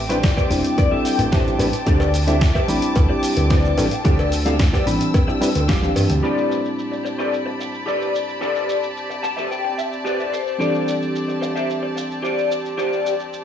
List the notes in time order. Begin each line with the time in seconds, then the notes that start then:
Already playing: A1 C4 G5 A5 D6
0.09 G3 C4 D4 E4 G4 B4 C5 D5, closed hi-hat, shaker
0.23 kick, snare, closed hi-hat, shaker
0.37 G4 B4 C5 D5, kick, cowbell, shaker
0.50 E1 G3 C4 D4 E4 C5, open hi-hat, shaker
0.64 muted clean electric guitar stroke, closed hi-hat, shaker
0.78 D5, kick, closed hi-hat, cowbell, shaker
0.91 G3 C4 D4 E4 A4 E5, muted clean electric guitar stroke
1.05 G5, muted clean electric guitar stroke, open hi-hat, shaker
1.19 A1, closed hi-hat, cowbell, shaker
1.32 G3 C4 D4 E4 G4 B4 C5 E5 A5, kick, snare, closed hi-hat, shaker
1.47 shaker
1.59 A1 G3 C4 D4 E4 B4, open hi-hat, cowbell, shaker
1.73 muted clean electric guitar stroke, closed hi-hat, shaker
1.86 D2 G3 C4 D4 E4 G4 A4 C5 D5 D6, kick, closed hi-hat, shaker
2.00 cowbell, shaker
2.14 open hi-hat, shaker
2.27 G3 C4 D4 E4 G4 A4 C5 E5, closed hi-hat, shaker
2.41 kick, snare, closed hi-hat, shaker
2.54 G4 C5 E5, kick, cowbell, shaker
2.68 A1 G3 C4 D4 E4 B5, open hi-hat, shaker
2.82 muted clean electric guitar stroke, closed hi-hat, shaker
2.96 D2, kick, closed hi-hat, cowbell, shaker
3.09 G3 C4 D4 E4 G4, muted clean electric guitar stroke
3.23 muted clean electric guitar stroke, open hi-hat, shaker
3.37 D2, closed hi-hat, cowbell, shaker
3.50 G3 C4 D4 E4 G4 B4 C5 D5, kick, snare, closed hi-hat, shaker
3.65 shaker
3.77 A1 G3 C4 D4 E4 A4, open hi-hat, cowbell, shaker
3.91 muted clean electric guitar stroke, closed hi-hat, shaker
4.04 D2 G3 C4 D4 E4 G4 A4 C5 D5 E6, kick, closed hi-hat, shaker
4.19 cowbell, shaker
4.32 open hi-hat, shaker
4.45 G3 C4 D4 E4 G4 A4 C5 F5, closed hi-hat, shaker
4.59 kick, snare, closed hi-hat, shaker
4.73 G4 C5 D5, kick, snare, cowbell, shaker
4.86 A1 E3 G3 C4 D4 B5, open hi-hat, shaker
5.01 muted clean electric guitar stroke, closed hi-hat, shaker
5.14 kick, closed hi-hat, cowbell, shaker
5.27 G3 C4 D4 E4 G4, muted clean electric guitar stroke, shaker
5.41 G3 C4 D4 E4 B4, muted clean electric guitar stroke, open hi-hat, shaker
5.55 D2, closed hi-hat, cowbell, shaker
5.68 D1 G4 C5 F5, kick, snare, closed hi-hat, shaker
5.82 E3 G3 C4 D4 G4, shaker
5.96 G2, open hi-hat, cowbell, shaker
6.10 D2, muted clean electric guitar stroke, closed hi-hat, shaker
6.22 A2 G3 C4 D4 E4 G4 A4 B4 C5 D5 A5 B5, shaker
6.38 shaker
6.51 shaker
6.65 shaker
6.79 shaker
6.92 muted clean electric guitar stroke, shaker
7.05 muted clean electric guitar stroke, shaker
7.18 G4 A4 B4 C5 D5, shaker
7.33 shaker
7.46 muted clean electric guitar stroke
7.60 muted clean electric guitar stroke, shaker
7.74 shaker
7.86 G4 A4 B4 C5 D5, shaker
8.02 shaker
8.15 shaker
8.29 shaker
8.41 G4 A4 B4 C5 D5, shaker
8.56 shaker
8.69 shaker
8.83 shaker
8.97 shaker
9.10 muted clean electric guitar stroke, shaker
9.23 A5, muted clean electric guitar stroke, shaker
9.37 G4 A4 B4 C5 E5, shaker
9.51 G5, shaker
9.64 muted clean electric guitar stroke
9.78 E5, muted clean electric guitar stroke, shaker
9.93 shaker
10.05 G4 A4 B4 C5 D5, shaker
10.19 E5, shaker
10.33 C5, shaker
10.47 shaker
10.58 E3 G3 C4 D4 G4 A4 C5 D5, shaker
10.74 shaker
10.88 shaker
11.02 shaker
11.15 shaker
11.28 muted clean electric guitar stroke, shaker
11.41 muted clean electric guitar stroke, shaker
11.56 G4 C5 E5, shaker
11.70 shaker
11.83 muted clean electric guitar stroke
11.96 muted clean electric guitar stroke, shaker
12.11 shaker
12.23 G4 C5 D5, shaker
12.38 shaker
12.51 shaker
12.65 shaker
12.78 G4 C5 D5, shaker
12.93 shaker
13.06 shaker
13.20 shaker
13.33 shaker